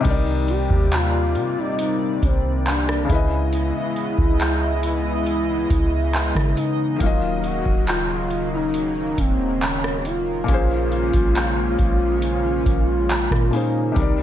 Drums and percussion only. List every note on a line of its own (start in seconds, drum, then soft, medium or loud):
0.05 kick loud
0.05 closed hi-hat medium
0.05 crash loud
0.48 closed hi-hat medium
0.70 kick loud
0.92 clap loud
0.92 closed hi-hat medium
1.35 closed hi-hat medium
1.79 closed hi-hat medium
2.22 kick medium
2.22 closed hi-hat medium
2.66 clap loud
2.66 closed hi-hat medium
2.89 cross-stick medium
3.09 kick loud
3.09 closed hi-hat medium
3.53 closed hi-hat medium
3.96 closed hi-hat medium
4.18 kick loud
4.40 clap loud
4.40 closed hi-hat medium
4.83 closed hi-hat medium
5.26 closed hi-hat medium
5.70 kick loud
5.70 closed hi-hat medium
6.14 clap loud
6.14 closed hi-hat medium
6.35 kick medium
6.35 cross-stick medium
6.57 closed hi-hat medium
7.00 kick loud
7.00 closed hi-hat medium
7.44 closed hi-hat medium
7.66 kick loud
7.87 clap loud
7.87 closed hi-hat medium
8.30 closed hi-hat medium
8.74 closed hi-hat medium
9.18 kick medium
9.18 closed hi-hat medium
9.62 clap loud
9.62 closed hi-hat medium
9.84 cross-stick medium
10.05 closed hi-hat medium
10.48 kick loud
10.48 closed hi-hat medium
10.92 closed hi-hat soft
11.13 kick loud
11.13 closed hi-hat medium
11.35 clap loud
11.35 closed hi-hat medium
11.79 kick medium
11.79 closed hi-hat medium
12.22 closed hi-hat medium
12.66 kick medium
12.66 closed hi-hat medium
13.10 clap loud
13.10 closed hi-hat medium
13.31 kick medium
13.31 cross-stick medium
13.53 open hi-hat medium
13.96 kick loud
13.96 closed hi-hat medium